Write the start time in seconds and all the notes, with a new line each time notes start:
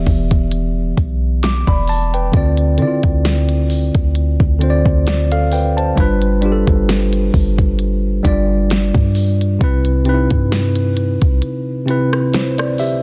Already playing: E3 B3 G4 D5 E5
0.06 E1, kick, open hi-hat
0.31 kick, closed hi-hat
0.52 closed hi-hat
0.97 B1, kick, closed hi-hat
1.43 D6, snare, closed hi-hat
1.67 E1 D5 B5, kick, closed hi-hat
1.88 A5, open hi-hat
2.14 B4 G5, closed hi-hat
2.32 D2 D3 C4 F4, kick, closed hi-hat
2.36 D5
2.57 closed hi-hat
2.78 D3 C4 E4, closed hi-hat
2.82 D5
2.87 F4
3.03 D2, kick, closed hi-hat
3.25 snare, closed hi-hat
3.49 closed hi-hat
3.70 open hi-hat
3.95 D2, kick, closed hi-hat
4.15 closed hi-hat
4.40 D2, kick
4.59 D3 C4 F4, closed hi-hat
4.63 C5
4.70 D5
4.86 D2, kick
5.07 F4 D5, snare, closed hi-hat
5.32 A4 F5, closed hi-hat
5.52 B4 G5, open hi-hat
5.77 C5 A5, closed hi-hat
5.95 G1 G3 D4 F4, kick, closed hi-hat
6.00 B4
6.22 closed hi-hat
6.41 G3 D4 F4, closed hi-hat
6.46 G4
6.52 A4
6.67 G1, kick, closed hi-hat
6.89 snare, closed hi-hat
7.13 closed hi-hat
7.34 G1, kick, open hi-hat
7.58 kick, closed hi-hat
7.79 closed hi-hat
8.23 G1 G3 D4 F4, kick, closed hi-hat
8.27 D5
8.70 snare, closed hi-hat
8.95 G2, kick, closed hi-hat
9.15 open hi-hat
9.41 closed hi-hat
9.59 C2 C3 C4 E4, kick, closed hi-hat
9.64 B4
9.85 closed hi-hat
10.05 C3 C4 D#4, closed hi-hat
10.09 B4
10.14 E4
10.31 G2, kick, closed hi-hat
10.52 snare, closed hi-hat
10.76 closed hi-hat
10.97 closed hi-hat
11.22 C2, kick, closed hi-hat
11.42 closed hi-hat
11.86 C3 C4 E4, closed hi-hat
11.90 B4
12.13 cross-stick
12.34 E4 C5, snare, closed hi-hat
12.58 D5, cross-stick, closed hi-hat
12.78 G4 E5, open hi-hat